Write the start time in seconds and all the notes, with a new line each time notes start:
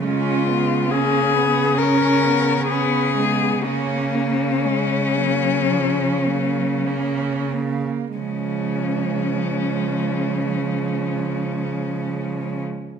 0.04 C#3 G#3 C#4 F4
0.48 B3
0.91 A#3 C#4 G#4
1.34 B3
1.78 C#4 A#4
2.25 B3
2.68 B3 C#4 G#4
3.16 G#3 B3
3.64 C#3 A#3 C#4
4.15 A#3
4.64 G#3 C#4
5.16 F#3 A#3
5.69 F3 C#4
6.25 F#3 A#3
6.86 A#3 C#4
7.53 A#3
8.17 C#3 F3 G#3 C#4